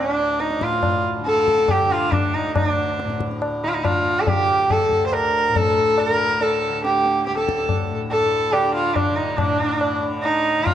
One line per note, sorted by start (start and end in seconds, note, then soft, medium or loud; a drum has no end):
0.00 2.42 D2 medium
0.00 0.58 A2 medium
0.00 1.19 D3 medium
0.00 0.12 C#4 medium
0.12 0.42 D4 medium
0.40 0.65 D#4 medium
0.40 tabla te medium
0.50 tabla te soft
0.59 3.03 A2 medium
0.59 tabla ke medium
0.64 1.06 F4 medium
0.73 tabla te soft
0.83 tabla na medium
0.83 tabla ge medium
1.19 1.82 D3 medium
1.26 1.72 A4 medium
1.26 tabla te medium
1.37 tabla te medium
1.48 tabla ke soft
1.58 tabla te medium
1.68 1.93 G4 medium
1.68 tabla na medium
1.68 tabla ge medium
1.82 3.64 D3 medium
1.90 2.15 F4 medium
1.90 tabla te medium
2.12 2.36 D4 medium
2.12 tabla na medium
2.12 tabla ge medium
2.35 2.56 D#4 medium
2.42 4.88 D2 medium
2.56 2.68 D#4 medium
2.56 tabla na medium
2.56 tabla ge medium
2.68 3.17 D4 medium
2.99 tabla te medium
3.04 5.48 A2 medium
3.10 tabla te medium
3.20 tabla ke medium
3.31 tabla te soft
3.42 tabla na medium
3.64 4.26 D3 medium
3.64 3.70 D#4 medium
3.69 3.75 F4 medium
3.74 3.86 D#4 medium
3.85 4.22 F4 medium
3.85 tabla na medium
3.85 tabla ge medium
4.21 4.29 A4 medium
4.26 6.10 D3 soft
4.26 4.73 G4 medium
4.26 tabla tin medium
4.26 tabla ge medium
4.70 5.06 A4 medium
4.70 tabla na medium
4.70 tabla ge medium
4.89 7.29 D2 medium
4.89 tabla ge soft
5.06 5.14 C5 medium
5.13 5.58 A#4 medium
5.13 tabla na medium
5.49 7.90 A2 soft
5.56 6.00 A4 medium
5.56 tabla tin medium
5.56 tabla ge medium
5.98 6.11 A4 loud
5.98 tabla na medium
6.10 6.69 D3 soft
6.10 6.44 A#4 loud
6.41 6.84 A4 medium
6.41 tabla tin medium
6.69 8.52 D3 medium
6.85 7.24 G4 medium
6.85 tabla te medium
7.06 tabla te medium
7.26 10.74 D2 soft
7.26 7.36 G4 medium
7.26 tabla te medium
7.38 7.97 A4 medium
7.38 tabla te medium
7.49 tabla ke medium
7.59 tabla te medium
7.69 tabla na medium
7.69 tabla ge medium
7.91 9.39 A2 medium
8.11 8.54 A4 medium
8.11 tabla na medium
8.52 9.12 D3 medium
8.52 8.74 G4 medium
8.52 tabla na medium
8.75 8.98 F4 medium
8.96 9.17 D4 medium
8.96 tabla na medium
8.96 tabla ge medium
9.12 9.99 D3 soft
9.16 9.38 D#4 medium
9.37 10.74 A2 medium
9.37 10.01 D4 medium
9.37 tabla na medium
9.37 tabla ge medium
9.81 tabla na medium
9.99 10.60 D3 medium
10.23 10.66 D#4 medium
10.23 tabla na medium
10.60 10.74 D3 medium
10.65 10.74 F4 medium
10.65 tabla na medium
10.65 tabla ge medium